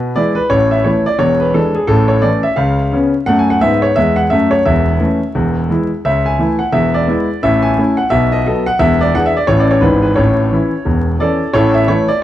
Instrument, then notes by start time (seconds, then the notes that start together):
grand piano
Already playing: B2 B4
0.16 E3 G#3 E4 D5
0.35 B4
0.50 A1 A2 C#5
0.71 E5
0.84 E3 A3 E4 C#5
1.06 D5
1.19 E1 E2 C#5
1.40 B4
1.54 E3 G#3 D4 A4
1.75 G#4
1.87 A1 A2 A4
2.08 C#5
2.22 E3 A3 C#4 D5
2.43 E5
2.56 C#2 C#3 F5
2.92 C#3 B3 C#4
3.26 F#2 A3 F#5
3.39 G#5
3.50 F#5
3.61 G#2 B3 E5
3.82 C#5
3.96 E2 G#3 E5
4.16 F#5
4.30 F#2 A3 E5
4.51 C#5
4.65 E1 E2 E5
5.00 E3 A3 C#4
5.35 E1 E2
5.69 E3 G#3 E4
6.05 C#2 C#3 E5
6.26 G#5
6.39 E3 A3 E4
6.59 F#5
6.72 E1 E2 E5
6.94 D5
7.08 G#3 B3 E4
7.43 A1 A2 E5
7.62 G#5
7.78 A3 C#4 E4
7.97 F#5
8.10 B1 B2 E5
8.32 D#5
8.46 F#3 B3 A4
8.66 F#5
8.79 E1 E2 E5
9.01 D5
9.15 E3 D4 G#4 F#5
9.26 E5
9.37 D5
9.47 A1 A2 E3 C#4 E4 C#5
9.60 D5
9.71 C#5
9.81 G#1 G#2 E3 D4 E4 B4
10.02 B4
10.16 A1 A2 C#5
10.52 E3 C#4 E4
10.85 E1 E2
11.20 E3 C#4 E4 A4 D5
11.53 A1 A2 E4 A4 C#5
11.74 E5
11.88 E3 A3 E4 C#5
12.08 D5